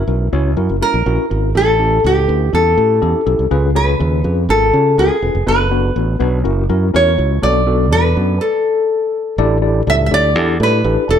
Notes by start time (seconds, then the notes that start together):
Already playing: E4
0.08 B1 C#4 E4 F#4 A#4
0.33 C#2 C#4 E4 F#4 C#5
0.57 F#2 C#4 E4 F#4 A#4
0.69 F#1
0.81 C#4 E4 F#4 A#4
0.94 A#1
1.06 A#1 C#4 E4 F#4 A#4
1.30 G#1 C#4 E4 F#4 A#4
1.55 A1 A2 C#4 E4 G4 A4
1.79 C#4 E4 G4 A4
2.04 C#2 C#4 E4 G4 A4
2.28 D2 C#4 E4 G4 B4
2.53 E2 C#4 E4 G4 A4
2.77 A2 C#4 E4 G4 A4
3.02 E2 C#4 E4 G4 A4
3.26 B1 C#4 E4 G4 A4
3.39 C2
3.51 C#2 C#3 C#4 F4 G#4 B4
3.75 C#4 F4 G#4 B4 C#5
4.00 D#2 C#4 F4 G#4 B4
4.24 F2 C#4 F4 G#4 B4
4.49 G#1 C#4 F4 G#4 A4 A#4
4.73 C#3 C#4 F4 G#4 C#5
4.98 C#2 C#4 F4 G#4 A#4
5.22 E1 C#4 F4 G#4 B4
5.35 F1
5.47 F#1 B3 D4 F#4 B4
5.71 B3 D4 F#4 B4
5.96 A1 B3 D4 F#4 B4
6.19 B1 B3 D4 F#4 B4
6.44 F#1 C#4 E4 F#4 A#4
6.69 F#2 C#4 E4 F#4 A#4
6.94 E2 C#4 E4 F#4 A#4 C#5
7.18 C#2 C#4 E4 F#4 C#5
7.42 B1 B2 B3 D4 F#4 A4 D5
7.66 B3 D4 F#4 A4
7.91 E2 B3 D4 F#4 A4 B4
8.16 F#2 B3 D4 F#4 B4
8.41 A4
9.38 A1 A2 D4 E4 G4 A4 D5
9.62 D4 E4 G4 A4 D5
9.87 C#2 D4 E4 G4 A4 D5 E5
10.06 E5
10.11 D2 D4 E4 G4 A4 D5
10.35 E2 D4 E4 G4 A4 D5
10.60 A2 D4 E4 G4 A4 B4
10.84 A1 D4 E4 G4 A4 B4
11.09 E1 D4 E4 G4 A4 D5